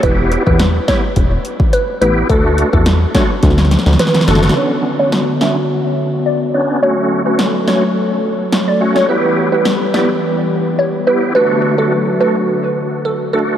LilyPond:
<<
  \new Staff \with { instrumentName = "Synth pluck" } { \time 4/4 \key b \minor \tempo 4 = 106 b'8 r16 b'16 r8 cis''16 r4 r16 b'16 r16 b'16 r16 | a'8 r16 a'16 r8 cis''16 r4 r16 b'16 r16 a'16 r16 | cis''8 r16 cis''16 r8 e''16 r4 r16 d''16 r16 cis''16 r16 | cis''8 r16 b'16 r8 cis''16 r4. d''16 r16 cis''16 |
b'8 r16 b'16 r8 d''16 r4 r16 cis''16 r16 b'16 r16 | b'8 r16 a'16 r8 b'16 r4 r16 a'16 r16 a'16 r16 | }
  \new Staff \with { instrumentName = "Tonewheel organ" } { \time 4/4 \key b \minor <b e' g'>8. <b e' g'>16 r8 <b e' g'>16 r4. r16 <b e' g'>8 | <a d' fis'>8. <a d' fis'>16 r8 <a d' fis'>16 r4. r16 <a d' fis'>8 | <b cis' d'>8. <b cis' d'>16 r8 <b cis' d'>16 r4. r16 <b cis' d'>8 | <a cis' fis'>8. <a cis' fis'>16 r8 <a cis' fis'>16 r4. r16 <a cis' fis'>8 |
<b e' g'>8. <b e' g'>16 r8 <b e' g'>16 r4. r16 <b e' g'>8 | <a d' fis'>8. <a d' fis'>16 r8 <a d' fis'>16 r4. r16 <a d' fis'>8 | }
  \new Staff \with { instrumentName = "Analog synth pad" } { \time 4/4 \key b \minor << { r1 | r1 | cis''1~ | cis''1 |
<b b'>1 | <a a'>1 | } \\ { r1 | r1 | <d b fis'>1 | <fis a a'>1 |
<e g g'>1 | <d fis fis'>1 | } >> }
  \new Staff \with { instrumentName = "Analog synth bass" } { \clef bass \time 4/4 \key b \minor e,,8. e,,8. r8 e,,8 r4 a,,8 | d,8. e,8. r8 d,8. d,16 r8 fis,,8 | r1 | r1 |
r1 | r1 | }
  \new DrumStaff \with { instrumentName = "Drums" } \drummode { \time 4/4 <hh bd>8 hh16 bd16 <hh sn>8 <hh bd sn>8 <hh bd>8 hh16 bd16 hh8 hh8 | <hh bd>8 hh16 bd16 <hh sn>8 <hh bd sn>8 <hh bd sn>32 sn32 sn32 sn32 <hh sn>32 sn32 sn32 sn32 <hh sn>32 sn32 sn32 sn32 <hh sn>32 sn32 sn32 sn32 | r4 sn8 sn8 r4 r4 | r4 sn8 sn8 r4 sn8. sn16 |
r4 sn8 sn8 r4 r4 | r4 r4 r4 r4 | }
>>